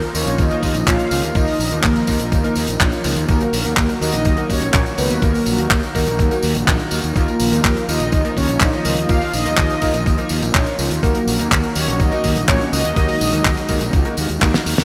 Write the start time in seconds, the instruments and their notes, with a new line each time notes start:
Already playing: analog synth pad D#3 F3 A#3 F4, analog polysynth A#3 A#4, electric grand piano A#3 D#4 F4 A#4
0.02 closed hi-hat, tambourine
0.14 fingered electric bass D#2, electric grand piano A#3 D#4 F4 A#4, analog polysynth C#4 C#5, open hi-hat, tambourine
0.27 fingered electric bass A#1, closed hi-hat, tambourine
0.38 fingered electric bass D#2, analog polysynth D#4 D#5, kick, closed hi-hat, tambourine
0.50 electric grand piano A#3 D#4 F4 A#4, closed hi-hat, tambourine
0.63 fingered electric bass D#2, kick, open hi-hat, tambourine
0.75 fingered electric bass A#1, closed hi-hat, tambourine
0.87 fingered electric bass A#1, electric grand piano A#3 D#4 F4 C#5, analog polysynth F4 F5, kick, clap, closed hi-hat, tambourine
0.99 closed hi-hat, tambourine
1.11 fingered electric bass C#2, electric grand piano A#3 D#4 F4 A#4, open hi-hat, tambourine
1.23 fingered electric bass D#2, closed hi-hat, tambourine
1.35 fingered electric bass D#2, electric grand piano A#3 D#4 F4 A#4, analog synth pad D#4, analog polysynth D#4 D#5, kick, closed hi-hat, tambourine
1.47 open hi-hat, tambourine
1.59 fingered electric bass A#1, open hi-hat, tambourine
1.71 fingered electric bass D#2, electric grand piano A#3 D#4 F4 A#4, closed hi-hat, tambourine
1.83 fingered electric bass D#2, analog polysynth A#3 A#4, kick, clap, closed hi-hat, tambourine
1.96 closed hi-hat, tambourine
2.07 fingered electric bass D#2, electric grand piano A#3 D#4 F4 A#4, kick, open hi-hat, tambourine
2.20 fingered electric bass A#1, closed hi-hat, tambourine
2.32 fingered electric bass D#2, analog polysynth A#3 A#4, kick, closed hi-hat, tambourine
2.44 electric grand piano A#3 D#4 F4 A#4, closed hi-hat, tambourine
2.56 fingered electric bass D#2, open hi-hat, tambourine
2.67 fingered electric bass A#1, closed hi-hat, tambourine
2.80 fingered electric bass A#1, electric grand piano A#3 D#4 F4 C#5, kick, clap, closed hi-hat
2.92 closed hi-hat, tambourine
3.04 fingered electric bass C#2, electric grand piano A#3 D#4 F4 A#4, open hi-hat, tambourine
3.16 fingered electric bass D#2, closed hi-hat, tambourine
3.29 fingered electric bass D#2, analog synth pad F#3 F#4, electric grand piano A#3 D#4 F#4 A#4, analog polysynth A#3 A#4, kick, closed hi-hat, tambourine
3.41 closed hi-hat, tambourine
3.53 fingered electric bass A#1, open hi-hat, tambourine
3.65 fingered electric bass D#2, electric grand piano A#3 D#4 F#4 A#4, closed hi-hat, tambourine
3.77 fingered electric bass D#2, kick, clap, closed hi-hat, tambourine
3.89 closed hi-hat, tambourine
4.01 fingered electric bass D#2, electric grand piano A#3 D#4 F#4 A#4, analog polysynth D#4 D#5, open hi-hat, tambourine
4.12 fingered electric bass A#1, closed hi-hat, tambourine
4.25 fingered electric bass D#2, kick, closed hi-hat, tambourine
4.37 electric grand piano A#3 D#4 F#4 A#4, closed hi-hat, tambourine
4.50 fingered electric bass D#2, analog polysynth C#4 C#5, kick, open hi-hat, tambourine
4.61 fingered electric bass A#1, closed hi-hat, tambourine
4.74 fingered electric bass A#1, electric grand piano A#3 D#4 F#4 C#5, kick, clap, closed hi-hat, tambourine
4.86 closed hi-hat, tambourine
4.98 fingered electric bass C#2, electric grand piano A#3 D#4 F#4 A#4, analog polysynth B3 B4, open hi-hat, tambourine
5.10 fingered electric bass D#2, closed hi-hat, tambourine
5.22 fingered electric bass D#2, electric grand piano A#3 D#4 F#4 A#4, analog polysynth A#3 A#4, kick, closed hi-hat, tambourine
5.34 open hi-hat, tambourine
5.46 fingered electric bass A#1, open hi-hat, tambourine
5.58 fingered electric bass D#2, electric grand piano A#3 D#4 F#4 A#4, closed hi-hat, tambourine
5.71 fingered electric bass D#2, analog polysynth A#3 A#4, kick, clap, closed hi-hat, tambourine
5.83 closed hi-hat, tambourine
5.95 fingered electric bass D#2, electric grand piano A#3 D#4 F#4 A#4, kick, open hi-hat, tambourine
6.07 fingered electric bass A#1, closed hi-hat, tambourine
6.19 fingered electric bass D#2, kick, closed hi-hat, tambourine
6.31 electric grand piano A#3 D#4 F#4 A#4, closed hi-hat, tambourine
6.43 fingered electric bass D#2, open hi-hat, tambourine
6.55 fingered electric bass A#1, closed hi-hat, tambourine
6.67 fingered electric bass A#1, electric grand piano A#3 D#4 F#4 A#4, kick, clap, closed hi-hat, tambourine
6.79 closed hi-hat, tambourine
6.91 fingered electric bass D#2, open hi-hat, tambourine
7.04 fingered electric bass D#2, closed hi-hat, tambourine
7.16 fingered electric bass D#2, analog synth pad F3 F4, electric grand piano A#3 D#4 F4 A#4, analog polysynth A#3 A#4, kick, closed hi-hat, tambourine
7.28 closed hi-hat, tambourine
7.40 fingered electric bass A#1, open hi-hat, tambourine
7.52 fingered electric bass D#2, electric grand piano A#3 D#4 F4 A#4, closed hi-hat, tambourine
7.64 fingered electric bass D#2, kick, clap, closed hi-hat, tambourine
7.77 closed hi-hat, tambourine
7.88 fingered electric bass D#2, electric grand piano A#3 D#4 F4 A#4, analog polysynth D#4 D#5, open hi-hat, tambourine
8.00 fingered electric bass A#1, closed hi-hat, tambourine
8.12 fingered electric bass D#2, kick, closed hi-hat, tambourine
8.25 electric grand piano A#3 D#4 F4 A#4, closed hi-hat, tambourine
8.37 fingered electric bass D#2, analog polysynth C#4 C#5, kick, open hi-hat, tambourine
8.49 fingered electric bass A#1, closed hi-hat, tambourine
8.60 fingered electric bass A#1, electric grand piano A#3 D#4 F4 C#5, analog polysynth D#4 D#5, kick, clap, closed hi-hat, tambourine
8.73 closed hi-hat, tambourine
8.85 fingered electric bass C#2, electric grand piano A#3 D#4 F4 A#4, open hi-hat, tambourine
8.97 fingered electric bass D#2, closed hi-hat, tambourine
9.09 fingered electric bass D#2, electric grand piano A#3 D#4 F4 A#4, analog polysynth F4 F5, kick, closed hi-hat, tambourine
9.22 open hi-hat, tambourine
9.33 fingered electric bass A#1, analog polysynth D#4 D#5, open hi-hat, tambourine
9.46 fingered electric bass D#2, electric grand piano A#3 D#4 F4 A#4, closed hi-hat, tambourine
9.57 fingered electric bass D#2, kick, clap, closed hi-hat, tambourine
9.70 closed hi-hat, tambourine
9.82 fingered electric bass D#2, electric grand piano A#3 D#4 F4 A#4, kick, open hi-hat, tambourine
9.94 fingered electric bass A#1, closed hi-hat, tambourine
10.06 fingered electric bass D#2, kick, closed hi-hat, tambourine
10.18 electric grand piano A#3 D#4 F4 A#4, closed hi-hat, tambourine
10.29 fingered electric bass D#2, open hi-hat, tambourine
10.42 fingered electric bass A#1, closed hi-hat, tambourine
10.54 fingered electric bass A#1, electric grand piano A#3 D#4 F4 C#5, kick, clap, closed hi-hat, tambourine
10.66 closed hi-hat, tambourine
10.79 fingered electric bass C#2, electric grand piano A#3 D#4 F4 A#4, open hi-hat, tambourine
10.91 fingered electric bass D#2, closed hi-hat, tambourine
11.03 fingered electric bass D#2, analog synth pad D#3 F#3 A#3 F#4, electric grand piano A#3 D#4 F#4 A#4, analog polysynth A#3 A#4, kick, closed hi-hat, tambourine
11.15 closed hi-hat, tambourine
11.27 fingered electric bass A#1, open hi-hat, tambourine
11.39 fingered electric bass D#2, electric grand piano A#3 D#4 F#4 A#4, closed hi-hat, tambourine
11.51 fingered electric bass D#2, kick, clap, closed hi-hat, tambourine
11.63 closed hi-hat, tambourine
11.75 fingered electric bass D#2, electric grand piano A#3 D#4 F#4 A#4, analog polysynth C#4 C#5, open hi-hat, tambourine
11.88 fingered electric bass A#1, closed hi-hat, tambourine
12.00 fingered electric bass D#2, analog polysynth D#4 D#5, kick, closed hi-hat, tambourine
12.12 electric grand piano A#3 D#4 F#4 A#4, closed hi-hat, tambourine
12.24 fingered electric bass D#2, kick, open hi-hat, tambourine
12.36 fingered electric bass A#1, closed hi-hat, tambourine
12.48 fingered electric bass A#1, electric grand piano A#3 D#4 F#4 C#5, analog polysynth C#4 C#5, kick, clap, closed hi-hat, tambourine
12.60 closed hi-hat, tambourine
12.72 fingered electric bass C#2, electric grand piano A#3 D#4 F#4 A#4, analog polysynth D#4 D#5, open hi-hat, tambourine
12.85 fingered electric bass D#2, closed hi-hat, tambourine
12.96 fingered electric bass D#2, analog synth pad G#3, electric grand piano A#3 D#4 F#4 A#4, kick, closed hi-hat, tambourine
13.08 open hi-hat, tambourine
13.21 fingered electric bass A#1, open hi-hat, tambourine
13.33 fingered electric bass D#2, electric grand piano A#3 D#4 F#4 A#4, closed hi-hat, tambourine
13.45 fingered electric bass D#2, kick, clap, closed hi-hat, tambourine
13.57 closed hi-hat, tambourine
13.69 fingered electric bass D#2, electric grand piano A#3 D#4 F#4 A#4, kick, open hi-hat, tambourine
13.81 fingered electric bass A#1, closed hi-hat, tambourine
13.93 fingered electric bass C#2, kick, closed hi-hat, tambourine
14.05 electric grand piano A#3 D#4 F#4 A#4, closed hi-hat, tambourine
14.17 fingered electric bass D#2, open hi-hat, tambourine
14.29 fingered electric bass D#2, closed hi-hat, tambourine
14.41 fingered electric bass D#2, electric grand piano A#3 D#4 F#4 A#4, kick, clap, closed hi-hat, tambourine
14.54 snare, closed hi-hat, tambourine
14.66 fingered electric bass D#2, open hi-hat, tambourine
14.78 fingered electric bass D#2, snare, closed hi-hat, tambourine